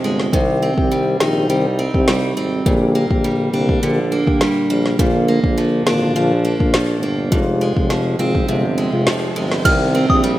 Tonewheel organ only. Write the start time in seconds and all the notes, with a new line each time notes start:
0.33 D#3 C4 G4
0.78 D#3 C4 G4
1.20 D#3 C4 G4
1.49 D#3 C4 G4
1.94 D#3 C4 G4
2.66 D3 A#3 G4
3.10 D3 A#3 G4
3.53 D3 A#3 G4
3.82 D3 A#3 G4
4.27 D3 A#3 G4
4.99 D3 A#3 F4
5.44 D3 A#3 F4
5.86 D3 A#3 F4
6.15 D3 A#3 F4
6.60 D3 A#3 F4
7.32 C3 G#3 F4
7.76 C3 G#3 F4
8.19 C3 G#3 F4
8.48 C3 G#3 F4
8.93 C3 G#3 F4
9.65 D#3 C4 G4
10.10 D#3 C4 G4